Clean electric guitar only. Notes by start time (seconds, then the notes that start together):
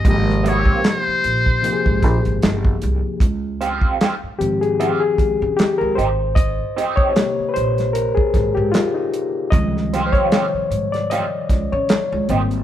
0.44 A3 B3 F#4
0.59 A#3 C4 G4
3.61 C4 F4 G4
4.02 C4 F4 G4
4.80 C4 F4 G4
5.97 C4 D#4 G4
6.76 C4 D#4 G4
9.93 C4 F4 G4
10.33 C4 F4 G4
11.12 C4 F4 G4
12.30 C4 D#4 G4